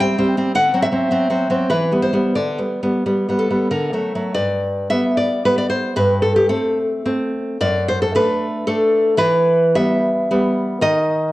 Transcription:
0.00 G3 C4 G5
0.18 G3 C4
0.37 G3 C4
0.55 D3 F#5
0.74 F#3 C4
0.82 E5
0.92 F#3 C4
1.11 F#3 C4
1.30 F#3 C4
1.50 F#3 C4
1.70 E3 B4
1.92 G3 B3
2.02 C5
2.13 G3 B3
2.35 D3 D5
2.58 G3 B3
2.83 G3 B3
3.06 G3 B3
3.29 G3 B3
3.39 A4
3.50 G3 B3
3.71 D3 A#4
3.93 F#3 A3
4.15 F#3 A3
4.34 G2 D5
4.90 G3 B3 E5
5.17 D5
5.45 G3 B3 B4
5.58 D5
5.70 C5
5.96 G2 B4
6.22 A4
6.36 G4
6.49 A3 C4 A4
7.05 A3 C4
7.61 F#2 D5
7.88 C5
8.02 A4
8.15 A3 D4 B4
8.67 A3 D4 A4
9.17 E3 B4
9.76 G3 B3 E5
10.31 G3 B3
10.81 D#3 D#5

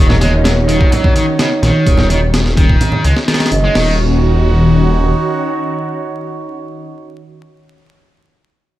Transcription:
Already playing: D#1 D#3 C#4 D#4
0.09 F#3, snare, low conga
0.21 G#3 D#4 F#4 C#5, snare, closed hi-hat, high conga
0.44 F#3, snare, closed hi-hat
0.68 D#3, closed hi-hat
0.81 kick
0.92 F#3, closed hi-hat, low conga
1.04 kick, low conga
1.15 D#3, closed hi-hat, high conga
1.39 C#3, snare, closed hi-hat
1.63 A#1 D#3, snare, closed hi-hat
1.87 D#1, kick, closed hi-hat
1.97 snare, low conga
2.09 D#3 D#4 F#4 C#5, closed hi-hat, high conga
2.34 snare, closed hi-hat
2.46 snare
2.57 D#3, kick, closed hi-hat
2.69 kick
2.81 closed hi-hat, low conga
2.92 high conga, low conga
3.05 C#2 G#3, closed hi-hat
3.17 snare
3.28 D#3, snare, closed hi-hat
3.34 snare, closed hi-hat
3.40 D#3, snare, closed hi-hat
3.46 snare, closed hi-hat
3.52 F#1 D#4 F#4 D#5, closed hi-hat
3.64 G#3
3.75 D#1 D#3 C#4 D#4 F#4 C#5, snare, crash

